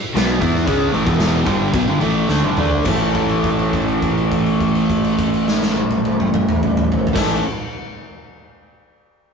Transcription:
0.14 0.39 B1 loud
0.14 0.39 B2 medium
0.14 0.40 F#3 loud
0.14 0.40 B3 loud
0.14 snare loud
0.14 crash medium
0.40 0.65 E2 medium
0.40 0.65 E3 medium
0.40 0.66 B3 medium
0.40 0.66 E4 loud
0.40 kick loud
0.40 crash medium
0.55 snare soft
0.66 0.91 C#2 medium
0.66 0.92 C#3 loud
0.66 0.92 G#3 loud
0.66 0.92 C#4 loud
0.66 kick loud
0.66 crash medium
0.92 1.06 A1 loud
0.92 1.05 A2 medium
0.92 1.05 E3 medium
0.92 crash medium
1.05 1.43 E1 loud
1.05 1.45 E2 medium
1.05 1.45 B2 loud
1.05 1.45 E3 loud
1.05 kick loud
1.20 snare loud
1.20 crash medium
1.46 1.72 G1 loud
1.46 1.72 G2 loud
1.46 1.73 D3 loud
1.46 1.73 G3 loud
1.46 kick loud
1.46 crash medium
1.73 1.86 B1 medium
1.73 1.86 B2 medium
1.73 1.87 F#3 loud
1.73 kick loud
1.73 crash medium
1.87 2.00 G1 loud
1.87 2.00 G2 loud
1.87 2.00 D3 loud
2.00 2.27 A1 medium
2.00 2.28 A2 medium
2.00 2.28 E3 loud
2.00 2.28 A3 loud
2.00 crash medium
2.28 2.41 D2 medium
2.28 2.42 D3 medium
2.28 2.42 A3 medium
2.28 snare medium
2.42 2.56 G1 medium
2.42 2.57 G2 medium
2.42 2.57 D3 loud
2.42 high tom medium
2.57 2.84 D2 loud
2.57 2.85 D3 medium
2.57 2.86 A3 medium
2.57 2.86 D4 loud
2.57 mid tom loud
2.71 floor tom medium
2.85 7.04 A1 loud
2.85 7.09 A2 loud
2.85 7.09 E3 loud
2.85 7.10 A3 loud
2.85 kick loud
2.85 crash medium
2.89 7.10 C#4 loud
2.89 7.11 A4 loud
3.15 kick medium
3.15 crash soft
3.29 crash soft
3.44 kick medium
3.44 crash soft
3.59 crash soft
3.73 kick medium
3.73 crash soft
3.88 crash soft
4.02 kick medium
4.02 crash soft
4.18 crash soft
4.32 kick medium
4.32 crash soft
4.46 crash soft
4.60 kick medium
4.60 crash soft
4.75 crash medium
4.90 kick medium
4.90 crash medium
5.05 crash medium
5.19 kick medium
5.19 crash medium
5.34 crash medium
5.48 snare medium
5.62 snare medium
5.76 high tom loud
5.91 high tom medium
6.05 high tom loud
6.20 mid tom loud
6.34 mid tom loud
6.49 mid tom loud
6.63 mid tom loud
6.77 mid tom loud
6.92 floor tom loud
7.07 floor tom loud
7.13 7.40 A1 medium
7.13 7.40 A2 loud
7.13 7.41 E3 loud
7.13 7.42 A3 loud
7.13 7.42 C#4 loud
7.13 kick loud
7.13 snare loud
7.13 crash loud
7.17 7.43 A4 loud

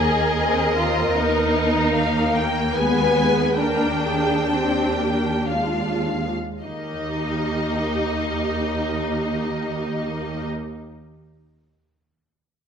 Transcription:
0.00 1.12 D#2 soft
0.00 0.39 A#3 soft
0.00 0.73 G#4 medium
0.00 2.74 A#4 soft
0.00 1.89 D#5 soft
0.41 0.76 C4 soft
0.78 1.15 C4 soft
0.78 1.16 F4 soft
1.16 6.30 D#2 soft
1.16 1.93 B3 soft
1.16 2.33 D#4 medium
1.94 2.75 A#3 soft
1.94 2.34 F5 soft
2.35 2.75 A#3 soft
2.35 2.75 G5 soft
2.74 3.15 G#3 soft
2.74 3.58 B3 medium
2.74 3.58 B4 soft
2.74 3.59 G#5 soft
3.16 3.58 G#3 soft
3.58 4.50 A#3 soft
3.58 6.02 D4 medium
3.58 4.02 A#4 soft
3.58 5.47 G5 soft
4.03 4.49 G#4 soft
4.50 4.99 C4 soft
4.50 5.49 G4 soft
4.98 5.50 A#3 soft
5.50 6.34 G#3 soft
5.50 6.34 F4 soft
5.50 6.32 F5 soft
6.62 10.45 D#2 soft
6.62 10.45 A#3 soft
6.62 10.47 D#4 soft
6.62 10.46 G4 soft
6.62 10.45 D#5 soft

